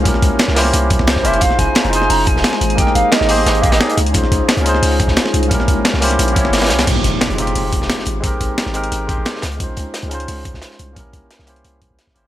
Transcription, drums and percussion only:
0.05 kick loud
0.05 closed hi-hat medium
0.14 snare soft
0.22 kick medium
0.22 closed hi-hat medium
0.39 snare loud
0.39 closed hi-hat medium
0.48 snare soft
0.56 snare loud
0.56 closed hi-hat medium
0.56 open hi-hat medium
0.65 snare soft
0.73 closed hi-hat medium
0.90 kick loud
0.90 closed hi-hat medium
0.99 snare soft
1.07 snare loud
1.07 closed hi-hat medium
1.16 kick medium
1.16 snare soft
1.25 closed hi-hat medium
1.34 closed hi-hat soft
1.41 kick loud
1.41 closed hi-hat medium
1.51 snare soft
1.59 kick medium
1.59 closed hi-hat medium
1.75 snare loud
1.75 closed hi-hat medium
1.84 closed hi-hat soft
1.93 closed hi-hat medium
2.02 snare soft
2.10 closed hi-hat medium
2.10 open hi-hat medium
2.27 kick loud
2.27 closed hi-hat medium
2.37 snare soft
2.44 snare loud
2.44 closed hi-hat medium
2.52 snare medium
2.61 closed hi-hat medium
2.70 closed hi-hat soft
2.78 kick loud
2.78 closed hi-hat medium
2.87 snare soft
2.95 closed hi-hat medium
3.12 snare loud
3.12 closed hi-hat medium
3.21 snare medium
3.29 closed hi-hat medium
3.29 open hi-hat medium
3.38 snare soft
3.47 snare loud
3.47 closed hi-hat loud
3.47 closed hi-hat medium
3.55 closed hi-hat soft
3.63 kick loud
3.63 closed hi-hat medium
3.72 snare loud
3.72 snare soft
3.72 closed hi-hat medium
3.81 snare loud
3.81 closed hi-hat medium
3.81 closed hi-hat soft
3.90 closed hi-hat medium
3.97 closed hi-hat medium
4.06 closed hi-hat soft
4.14 kick loud
4.14 closed hi-hat medium
4.23 snare soft
4.32 kick medium
4.32 closed hi-hat medium
4.49 snare loud
4.49 closed hi-hat medium
4.57 closed hi-hat soft
4.66 closed hi-hat medium
4.75 snare soft
4.83 closed hi-hat loud
4.83 open hi-hat medium
5.00 kick loud
5.00 closed hi-hat medium
5.08 snare soft
5.17 snare loud
5.17 closed hi-hat medium
5.26 snare soft
5.26 snare medium
5.34 closed hi-hat medium
5.43 closed hi-hat soft
5.51 kick loud
5.51 closed hi-hat medium
5.60 snare soft
5.68 kick medium
5.68 closed hi-hat medium
5.85 snare loud
5.85 closed hi-hat medium
5.94 snare medium
6.02 closed hi-hat medium
6.02 open hi-hat medium
6.11 snare soft
6.11 closed hi-hat soft
6.19 closed hi-hat loud
6.28 closed hi-hat soft
6.36 kick loud
6.36 closed hi-hat medium
6.45 snare medium
6.53 snare medium
6.53 closed hi-hat medium
6.53 closed hi-hat loud
6.58 snare medium
6.58 closed hi-hat medium
6.61 snare medium
6.61 closed hi-hat medium
6.66 snare medium
6.66 closed hi-hat medium
6.70 snare loud
6.70 closed hi-hat medium
6.79 snare loud
6.79 snare medium
6.79 closed hi-hat medium
6.79 closed hi-hat soft
6.87 kick loud
6.87 closed hi-hat medium
6.87 crash medium
7.04 closed hi-hat medium
7.21 snare loud
7.21 closed hi-hat medium
7.30 closed hi-hat soft
7.38 closed hi-hat medium
7.47 closed hi-hat soft
7.55 closed hi-hat medium
7.55 open hi-hat medium
7.73 kick loud
7.73 closed hi-hat medium
7.82 snare soft
7.90 snare loud
7.90 closed hi-hat medium
7.99 snare soft
8.06 closed hi-hat medium
8.24 kick loud
8.24 closed hi-hat medium
8.41 kick medium
8.41 closed hi-hat medium
8.58 snare loud
8.58 closed hi-hat medium
8.66 snare soft
8.74 closed hi-hat medium
8.84 closed hi-hat soft
8.92 closed hi-hat medium
9.09 kick loud
9.09 closed hi-hat medium
9.25 snare loud
9.25 closed hi-hat medium
9.35 snare soft
9.42 snare loud
9.42 closed hi-hat medium
9.52 closed hi-hat soft
9.60 kick loud
9.60 closed hi-hat medium
9.77 closed hi-hat medium
9.94 snare loud
9.94 closed hi-hat medium
10.02 closed hi-hat soft
10.11 closed hi-hat medium
10.20 closed hi-hat soft
10.28 closed hi-hat medium
10.28 open hi-hat medium
10.45 kick loud
10.45 closed hi-hat medium
10.54 snare soft
10.62 snare loud
10.62 closed hi-hat medium
10.71 snare soft
10.79 closed hi-hat medium
10.96 kick loud
10.96 closed hi-hat medium
11.13 kick medium
11.13 closed hi-hat medium
11.31 snare loud
11.31 closed hi-hat medium
11.39 snare soft
11.47 closed hi-hat medium
11.56 closed hi-hat soft
11.65 closed hi-hat medium
11.82 kick loud
11.82 closed hi-hat medium
11.99 snare medium
11.99 closed hi-hat medium
12.07 kick medium
12.07 snare soft
12.16 closed hi-hat medium

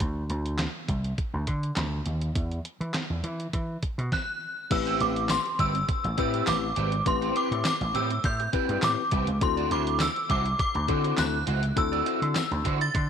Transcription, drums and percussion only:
0.00 kick loud
0.00 closed hi-hat medium
0.30 closed hi-hat medium
0.46 closed hi-hat soft
0.58 snare loud
0.58 clap medium
0.58 closed hi-hat medium
0.88 kick medium
0.88 closed hi-hat medium
1.04 closed hi-hat soft
1.18 kick loud
1.18 closed hi-hat medium
1.47 kick medium
1.47 closed hi-hat medium
1.63 closed hi-hat soft
1.76 snare medium
1.76 clap medium
1.76 closed hi-hat medium
2.06 closed hi-hat medium
2.21 closed hi-hat medium
2.35 kick loud
2.35 closed hi-hat medium
2.51 closed hi-hat soft
2.65 closed hi-hat medium
2.81 closed hi-hat soft
2.94 snare loud
2.94 clap medium
2.94 closed hi-hat medium
3.24 closed hi-hat medium
3.40 closed hi-hat soft
3.53 kick loud
3.53 closed hi-hat medium
3.83 kick medium
3.83 closed hi-hat medium
3.99 closed hi-hat soft
4.12 kick loud
4.12 snare medium
4.71 kick loud
4.71 closed hi-hat loud
4.71 crash loud
4.87 closed hi-hat soft
5.00 closed hi-hat medium
5.16 closed hi-hat medium
5.29 snare loud
5.29 clap loud
5.29 closed hi-hat medium
5.29 tambourine loud
5.46 closed hi-hat soft
5.59 kick medium
5.59 closed hi-hat medium
5.75 closed hi-hat medium
5.89 kick loud
5.89 closed hi-hat medium
6.04 closed hi-hat soft
6.18 kick medium
6.18 closed hi-hat medium
6.34 closed hi-hat medium
6.47 snare loud
6.47 clap medium
6.47 closed hi-hat medium
6.47 tambourine loud
6.76 closed hi-hat medium
6.92 closed hi-hat medium
7.06 kick loud
7.06 closed hi-hat loud
7.22 closed hi-hat soft
7.36 closed hi-hat medium
7.52 closed hi-hat medium
7.64 snare loud
7.64 clap medium
7.64 closed hi-hat medium
7.64 tambourine loud
7.81 closed hi-hat soft
7.95 closed hi-hat medium
8.10 closed hi-hat medium
8.24 kick loud
8.24 closed hi-hat medium
8.40 closed hi-hat soft
8.53 kick loud
8.53 closed hi-hat medium
8.69 closed hi-hat medium
8.82 snare loud
8.82 clap medium
8.82 closed hi-hat medium
8.82 tambourine loud
9.11 kick loud
9.11 closed hi-hat medium
9.27 closed hi-hat medium
9.41 kick loud
9.41 closed hi-hat loud
9.57 closed hi-hat soft
9.71 closed hi-hat medium
9.87 closed hi-hat medium
9.99 snare loud
9.99 clap medium
9.99 closed hi-hat medium
9.99 tambourine loud
10.16 closed hi-hat soft
10.30 kick medium
10.30 closed hi-hat medium
10.46 closed hi-hat soft
10.59 kick loud
10.59 closed hi-hat medium
10.75 closed hi-hat soft
10.88 kick loud
10.88 closed hi-hat medium
11.04 closed hi-hat medium
11.17 snare loud
11.17 clap medium
11.17 closed hi-hat loud
11.17 tambourine loud
11.47 closed hi-hat medium
11.63 closed hi-hat medium
11.77 kick loud
11.77 closed hi-hat loud
11.93 closed hi-hat soft
12.06 closed hi-hat medium
12.22 closed hi-hat medium
12.35 snare loud
12.35 clap medium
12.35 closed hi-hat medium
12.35 tambourine loud
12.52 closed hi-hat soft
12.65 kick medium
12.65 closed hi-hat medium
12.81 closed hi-hat medium
12.95 kick loud
12.95 closed hi-hat medium

